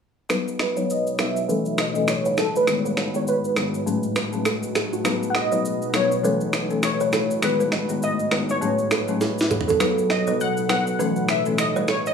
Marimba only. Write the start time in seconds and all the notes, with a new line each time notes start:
0.29 F#3 B3 D#4 B4
0.76 F#3 B3 D#4 B4
1.19 F#3 B3 D#4 B4
1.48 E3 A3 C#4 A4
1.95 E3 A3 C#4 A4
2.67 D#3 G#3 B3 G#4
3.14 D#3 G#3 B3 G#4
3.56 D#3 G#3 B3 G#4
3.86 A2 F#3 A3 C#4 G#4
4.33 A2 F#3 A3 C#4 G#4
5.04 F#3 B3 D#4 B4
5.51 F#3 B3 D#4 B4
5.94 F#3 B3 D#4 B4
6.23 E3 A3 C#4 A4
6.70 E3 A3 C#4 A4
7.42 D#3 G#3 B3 G#4
7.89 D#3 G#3 B3 G#4
8.31 D#3 G#3 B3 G#4
8.61 A2 F#3 A3 C#4 G#4
9.08 A2 F#3 A3 C#4 G#4
9.80 F#3 B3 D#4 B4
10.27 F#3 B3 D#4 B4
10.69 F#3 B3 D#4 B4
10.99 E3 A3 C#4 A4
11.46 E3 A3 C#4 A4